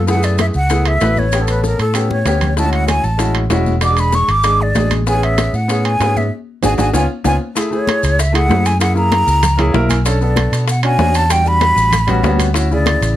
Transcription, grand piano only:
0.07 0.13 A3 medium
0.07 0.13 B3 medium
0.07 0.13 E4 medium
0.07 0.14 G#4 medium
0.15 0.53 A3 medium
0.15 0.53 B3 medium
0.15 0.54 E4 medium
0.15 0.54 G#4 medium
0.70 0.92 A3 medium
0.70 0.92 B3 medium
0.70 0.92 E4 medium
0.70 0.93 G#4 medium
1.01 1.23 A3 medium
1.01 1.23 B3 medium
1.01 1.23 E4 medium
1.01 1.24 B4 medium
1.32 1.38 B3 medium
1.32 1.38 C#4 medium
1.32 1.39 G4 medium
1.39 1.78 B3 medium
1.39 1.79 C#4 medium
1.39 1.79 A4 medium
1.94 2.16 B3 medium
1.94 2.17 C#4 medium
1.94 2.17 G4 medium
2.25 2.48 B3 medium
2.25 2.48 C#4 medium
2.25 2.48 G4 medium
2.56 2.62 G#3 medium
2.56 2.63 C#4 medium
2.56 2.63 E4 medium
2.56 2.63 F#4 medium
2.64 3.03 G#3 medium
2.64 3.03 C#4 medium
2.64 3.03 E4 medium
2.64 3.04 F#4 medium
3.18 3.40 G#3 medium
3.18 3.41 C#4 medium
3.18 3.41 E4 medium
3.18 3.41 F#4 medium
3.50 3.72 G#3 medium
3.50 3.72 C#4 medium
3.50 3.73 E4 medium
3.50 3.73 F#4 medium
3.82 3.87 G#3 medium
3.82 3.88 D4 medium
3.82 3.88 F#4 medium
3.89 4.28 G#3 medium
3.89 4.28 D4 medium
3.89 4.28 G#4 medium
4.43 4.66 G#3 medium
4.43 4.66 D4 medium
4.43 4.67 G#4 medium
4.74 4.97 G#3 medium
4.74 4.97 D4 medium
4.74 4.98 G#4 medium
5.07 5.12 B3 medium
5.07 5.12 C#4 medium
5.07 5.13 G#4 medium
5.13 5.52 B3 medium
5.13 5.52 C#4 medium
5.13 5.53 G#4 medium
5.68 5.91 B3 medium
5.68 5.91 C#4 medium
5.68 5.92 G#4 medium
6.00 6.22 B3 medium
6.00 6.23 C#4 medium
6.00 6.23 G#4 medium
6.63 6.73 D4 medium
6.63 6.73 F#4 medium
6.63 6.73 G#4 medium
6.78 6.88 D4 medium
6.78 6.88 F#4 medium
6.78 6.88 G#4 medium
6.93 7.04 B3 medium
6.93 7.04 C#4 medium
6.93 7.04 F4 medium
7.24 7.35 B3 medium
7.24 7.35 C#4 medium
7.24 7.35 F4 medium
7.55 7.67 A3 medium
7.55 7.67 E4 medium
7.55 7.68 G#4 medium
7.71 8.15 A3 medium
7.71 8.16 E4 medium
7.71 8.16 G#4 medium
8.32 8.44 A3 medium
8.32 8.45 E4 medium
8.32 8.45 G#4 medium
8.48 8.71 A3 medium
8.48 8.72 E4 medium
8.48 8.72 G#4 medium
8.79 8.91 A#3 medium
8.79 8.92 E4 medium
8.79 8.92 G#4 medium
8.94 9.39 A#3 medium
8.94 9.40 E4 medium
8.94 9.40 G#4 medium
9.58 9.69 A#3 medium
9.58 9.70 E4 medium
9.58 9.70 G#4 loud
9.58 9.73 C#5 medium
9.72 9.95 A#3 medium
9.72 9.96 E4 medium
9.72 9.97 A#4 loud
9.72 9.89 E5 medium
9.90 10.04 G#5 medium
10.05 10.16 C#4 medium
10.05 10.17 D4 medium
10.05 10.17 A4 medium
10.21 10.65 B3 medium
10.21 10.65 D4 medium
10.21 10.66 A4 medium
10.83 10.94 C#4 medium
10.83 10.95 D4 medium
10.83 10.95 F#4 medium
10.98 11.21 C#4 medium
10.98 11.21 D4 medium
10.98 11.21 F#4 medium
11.29 11.41 G3 medium
11.29 11.41 D4 medium
11.29 11.42 F#4 medium
11.44 11.89 G3 medium
11.44 11.89 D4 medium
11.44 11.89 F#4 medium
12.07 12.19 G3 medium
12.07 12.19 B3 medium
12.07 12.19 C#4 medium
12.07 12.19 F#4 loud
12.23 12.45 G3 medium
12.23 12.46 B3 medium
12.23 12.46 C#4 medium
12.23 12.46 F#4 loud
12.54 12.65 C#4 medium
12.54 12.66 E4 medium
12.54 12.67 F#4 medium
12.71 13.14 C#3 medium
12.71 13.15 E4 medium
12.71 13.15 G#4 medium

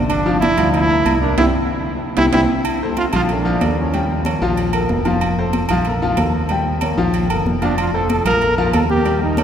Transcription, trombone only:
0.09 0.39 D4 loud
0.40 0.71 E4 loud
0.72 1.22 E4 loud
1.20 1.37 D4 loud
1.38 1.46 E4 loud
2.18 2.25 E4 loud
2.34 2.41 E4 loud
2.98 3.05 F4 loud
3.15 3.22 F4 loud
3.31 3.75 D4 medium
3.79 4.08 C#4 medium
7.63 7.77 D4 medium
7.78 7.93 F4 medium
7.94 8.09 A4 loud
8.10 8.25 A4 loud
8.27 8.56 A#4 loud
8.58 8.73 A#4 loud
8.74 8.81 A4 medium
8.90 9.20 G4 loud
9.22 9.44 D#4 medium

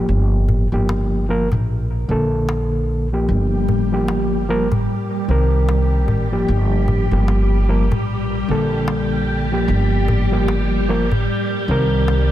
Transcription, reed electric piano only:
0.00 0.66 F3 medium
0.00 0.67 A#3 medium
0.00 0.67 G4 medium
0.72 1.25 F3 medium
0.72 1.25 A#3 medium
0.72 1.26 G4 medium
1.29 1.47 F3 medium
1.29 1.47 A#3 medium
1.29 1.48 A#4 medium
2.08 3.06 D3 medium
2.08 3.07 A#3 medium
2.08 3.08 A4 medium
3.13 3.87 F3 medium
3.13 3.87 A#3 medium
3.13 3.87 G4 medium
3.92 4.45 F3 medium
3.92 4.45 A#3 medium
3.92 4.46 G4 medium
4.49 4.67 F3 medium
4.49 4.67 A#3 medium
4.49 4.68 A#4 medium
5.28 6.26 D#3 medium
5.28 6.27 C4 medium
5.28 6.27 A#4 medium
6.32 7.06 F3 medium
6.32 7.07 A#3 medium
6.32 7.07 G4 medium
7.12 7.65 F3 medium
7.12 7.65 A#3 medium
7.12 7.65 G4 medium
7.69 7.87 F3 medium
7.69 7.87 A#3 medium
7.69 7.88 A#4 medium
8.48 9.46 D3 medium
8.48 9.47 A#3 medium
8.48 9.48 A4 medium
9.52 10.26 F3 medium
9.52 10.27 A#3 medium
9.52 10.27 G4 medium
10.32 10.84 F3 medium
10.32 10.85 A#3 medium
10.32 10.85 G4 medium
10.89 11.07 F3 medium
10.89 11.07 A#3 medium
10.89 11.07 A#4 medium
11.68 12.32 D#3 medium
11.68 12.32 C4 medium
11.68 12.32 A#4 medium

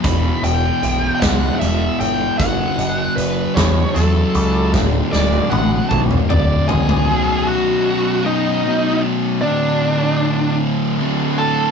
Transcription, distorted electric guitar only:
0.03 1.59 E2 medium
0.03 1.60 B2 medium
0.03 1.60 E3 loud
1.61 2.37 E2 medium
1.61 2.38 B2 medium
1.61 2.39 E3 medium
2.39 3.94 F#2 medium
2.39 3.95 C#3 loud
2.39 3.98 F#3 medium
3.96 4.72 F#2 medium
3.96 4.73 C#3 medium
3.96 4.77 F#3 medium
4.74 6.29 D2 medium
4.74 6.30 A2 loud
4.74 6.30 D3 loud
6.30 7.06 D2 medium
6.30 7.07 A2 medium
6.30 7.08 D3 medium
7.07 8.62 B1 medium
7.07 8.63 F#2 loud
7.07 8.64 B2 loud
8.64 9.40 B1 medium
8.64 9.41 F#2 medium
8.64 9.42 B2 loud
9.42 10.96 D2 medium
9.42 10.97 A2 medium
9.42 10.98 D3 loud
10.98 11.71 D2 medium
10.98 11.71 A2 medium
10.98 11.71 D3 medium

